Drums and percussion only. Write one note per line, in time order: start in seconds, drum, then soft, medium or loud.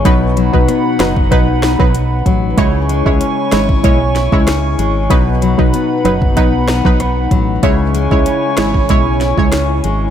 0.05 kick loud
0.05 closed hi-hat medium
0.37 closed hi-hat medium
0.54 kick medium
0.68 cross-stick medium
0.68 closed hi-hat medium
0.99 cross-stick loud
0.99 snare loud
0.99 closed hi-hat medium
1.16 kick medium
1.32 kick loud
1.32 closed hi-hat medium
1.62 cross-stick medium
1.62 snare loud
1.62 closed hi-hat soft
1.80 kick loud
1.95 closed hi-hat medium
2.26 kick loud
2.26 closed hi-hat medium
2.58 kick loud
2.58 closed hi-hat medium
2.89 closed hi-hat medium
3.06 kick medium
3.21 closed hi-hat medium
3.52 cross-stick loud
3.52 snare loud
3.52 closed hi-hat medium
3.69 kick medium
3.84 kick loud
3.84 closed hi-hat medium
4.16 snare medium
4.16 closed hi-hat soft
4.32 kick medium
4.47 cross-stick medium
4.47 snare loud
4.47 closed hi-hat medium
4.79 closed hi-hat medium
5.10 kick loud
5.10 closed hi-hat medium
5.42 closed hi-hat medium
5.59 kick loud
5.74 closed hi-hat medium
6.05 closed hi-hat medium
6.22 kick medium
6.37 kick loud
6.37 closed hi-hat medium
6.68 cross-stick medium
6.68 snare loud
6.68 closed hi-hat soft
6.85 kick medium
7.00 cross-stick medium
7.00 closed hi-hat medium
7.31 kick loud
7.31 closed hi-hat medium
7.63 kick loud
7.63 closed hi-hat medium
7.95 closed hi-hat medium
8.11 kick loud
8.26 closed hi-hat medium
8.57 cross-stick loud
8.57 snare loud
8.57 closed hi-hat medium
8.74 kick medium
8.89 kick loud
8.89 closed hi-hat medium
9.21 snare medium
9.21 closed hi-hat soft
9.38 kick loud
9.52 cross-stick medium
9.52 snare loud
9.52 closed hi-hat medium
9.84 closed hi-hat medium